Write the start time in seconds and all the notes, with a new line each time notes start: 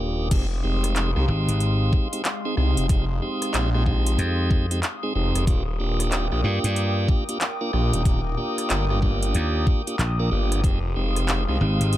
Already playing: D#1 A#3 D4 F4 G4 A#4 G5 D6 D#6
0.31 F1 G#3 C4 D#4 G4 F5 C6 D#6, kick, closed hi-hat, crash
0.64 F1 G#3 C4 D#4 G4
0.84 cross-stick, closed hi-hat
0.96 clap, closed hi-hat
1.16 C2 G#3 C4 D#4 G4, cross-stick
1.28 G#1 G#3 C4 D#4 G4
1.48 G#1, closed hi-hat
1.60 closed hi-hat
1.93 kick
2.13 G#3 C4 D#4 G4, closed hi-hat
2.25 clap, closed hi-hat
2.45 G#3 C4 D#4 G#4
2.57 C2 G#3 C4 D#4 G4, cross-stick
2.77 F1, closed hi-hat
2.89 G#3 C4 D#4 G4, kick, closed hi-hat
3.22 G#3 C4 D#4 G4
3.42 cross-stick, closed hi-hat
3.54 A#1, clap, closed hi-hat
3.74 G#3 C4 D#4 G4, cross-stick
3.86 G#3 C4 D#4 G4, kick
4.06 closed hi-hat
4.18 F2, closed hi-hat
4.51 kick
4.71 G#3 C4 D#4 G4, closed hi-hat
4.83 clap, closed hi-hat
5.03 G#3 C4 D#4 G#4
5.15 F1 G#3 C4 D#4 G4
5.36 F1, cross-stick, closed hi-hat
5.47 D#1 A#3 D4 F4 G4 A#4 G5 D6, kick, closed hi-hat
5.80 D#1 A#3 D4 F4 G4
6.00 cross-stick, closed hi-hat
6.12 clap, closed hi-hat
6.32 A#1 A#3 D4 F4 G4, cross-stick
6.44 G2 A#3 D4 F4 G4
6.64 G2, closed hi-hat
6.76 closed hi-hat
7.09 kick
7.29 A#3 D4 F4 G4, closed hi-hat
7.41 clap, closed hi-hat
7.61 A#3 D4 F4 A#4
7.73 A#1 A#3 D4 F4 G4, cross-stick
7.93 D#1, closed hi-hat
8.05 A#3 D4 F4 G4, kick, closed hi-hat
8.38 A#3 D4 F4 G4
8.58 cross-stick, closed hi-hat
8.70 G1, clap, closed hi-hat
8.90 A#3 D4 F4 G4, cross-stick
9.02 A#3 D4 F4 G4, kick
9.23 closed hi-hat
9.35 D#2, closed hi-hat
9.67 kick
9.87 A#3 D4 F4 G4, closed hi-hat
9.99 A#1, clap, closed hi-hat
10.20 A#3 D4 F4 A#4
10.31 G1 A#3 D4 F4 G4
10.52 cross-stick, closed hi-hat
10.64 F1 G#3 C4 D#4 G4 F5 C6, kick, closed hi-hat
10.96 F1 G#3 C4 D#4 G4
11.16 cross-stick, closed hi-hat
11.28 clap, closed hi-hat
11.49 C2 G#3 C4 D#4 G4, cross-stick
11.61 G#1 G#3 C4 D#4 G4
11.81 G#1, closed hi-hat
11.93 closed hi-hat